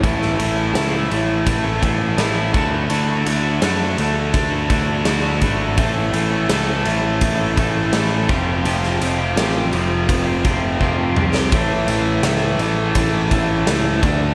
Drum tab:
RD |x-x-x-x-x-x-x-x-|x-x-x-x-x-x-x-x-|x-x-x-x-x-x-x-x-|x-x-x-x-x-x-----|
SD |-o--o-------o---|----o-------o---|----o-------o---|-o--o----------o|
T2 |----------------|----------------|----------------|--------------o-|
BD |o-------o-o---o-|--------o-o---o-|o-------o-o---o-|--------o-o-o---|

RD |x-x-x-x-x-x-x-x-|
SD |----o-------o---|
T2 |----------------|
BD |o-------o-o---o-|